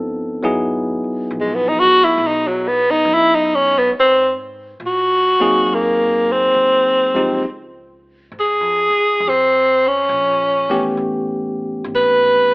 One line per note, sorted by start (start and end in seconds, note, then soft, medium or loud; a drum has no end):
0.00 0.41 G1 medium
0.00 0.37 F3 medium
0.00 0.38 B3 medium
0.00 0.38 C4 medium
0.00 0.38 D#4 medium
0.00 0.38 A4 medium
0.43 0.99 G#1 medium
0.43 1.77 F#3 medium
0.43 1.78 B3 medium
0.43 1.78 D#4 medium
0.43 1.78 E4 medium
0.43 1.78 G#4 medium
1.04 muted upright bass stroke soft
1.31 1.86 A#1 medium
1.41 1.56 G#3 medium
1.55 1.70 B3 medium
1.68 1.81 D#4 medium
1.80 2.06 F#4 loud
1.91 muted upright bass stroke soft
2.04 2.28 E4 medium
2.18 3.01 B1 medium
2.27 2.49 D#4 medium
2.47 2.69 F#3 medium
2.68 2.92 B3 medium
2.91 3.16 D#4 medium
3.05 3.89 F#2 loud
3.14 3.36 E4 medium
3.35 3.57 D#4 medium
3.55 3.80 C#4 medium
3.79 3.92 B3 medium
3.92 4.77 G#2 medium
4.00 4.33 C4 medium
4.80 5.36 A#2 medium
4.87 5.76 F#4 medium
5.40 5.64 F#3 medium
5.40 5.64 A#3 medium
5.40 5.64 C4 medium
5.40 5.65 D#4 medium
5.40 5.65 G#4 medium
5.40 muted upright bass stroke soft
5.67 6.52 F#2 medium
5.74 6.34 A#3 medium
6.32 7.46 C4 medium
6.54 7.40 D#2 medium
7.15 7.40 F3 medium
7.15 7.40 G#3 medium
7.15 7.41 C4 medium
7.15 7.41 D#4 medium
7.15 7.41 G4 medium
7.43 8.29 C#2 medium
8.32 8.60 G#2 medium
8.40 9.30 G#4 medium
8.60 8.89 F2 soft
8.90 9.18 C#2 medium
9.20 10.06 F2 medium
9.29 9.89 C4 medium
9.88 11.00 C#4 medium
10.09 10.94 A#1 medium
10.69 11.79 E3 medium
10.69 11.79 A3 medium
10.69 11.79 B3 medium
10.69 11.80 C#4 medium
10.69 11.80 G4 medium
10.97 11.82 A1 medium
11.84 12.54 G#1 medium
11.96 12.54 B4 medium